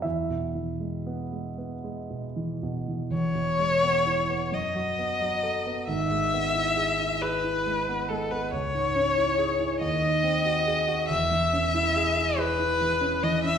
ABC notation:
X:1
M:6/8
L:1/16
Q:3/8=45
K:E
V:1 name="Violin"
z12 | c6 d6 | e6 B4 A B | c6 d6 |
e6 B4 d e |]
V:2 name="Grand piano"
[Ee]8- [Ee]2 z2 | z12 | z12 | z12 |
z12 |]
V:3 name="Grand piano"
E,, B,, E, G, B, G, B, G, B,, E, B,, E, | [E,,,E,,] B,, G, B, E B, F,, F, B, F, A B, | [G,,,G,,] G, B, E G E G E G, B, G, B, | C,, G,, C E G E D,, D, ^B, F G F |
[E,,,E,,] E, C E G E G E E, C E, C |]